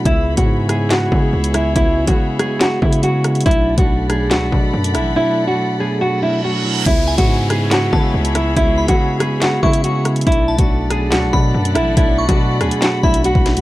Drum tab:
HH |x-----x-----x---x---------x-x---|x-----x-----x---x-----x-x---x-xx|xx----x-----x---x---------x-x---|--------------------------------|
CP |----------------x---------------|----------------x---------------|----------------x---------------|--------------------------------|
SD |------------r---o-----------r---|------------r---o-----------r---|------------r---o-----------r---|--------------------------------|
BD |o-----o-------------o-----------|o-----o-------------o-----------|o-----o-------------o-----------|--------------------------------|

HH |x-----x-----x---x---------x-x---|x-----x-----x---x-----x-x---x-xx|xx----x-----x---x---------x-x---|x-----x-----x-x-x-----x-x---x-x-|
CP |----------------x---------------|----------------x---------------|----------------x---------------|----------------x---------------|
SD |------------r---o-----------r---|------------r---o-----------r---|------------r---o-----------r---|------------r---o-----------o---|
BD |o-----o-------------o-----------|o-----o-------------o-----------|o-----o-------------o-----------|o-----o-------------o-----o-----|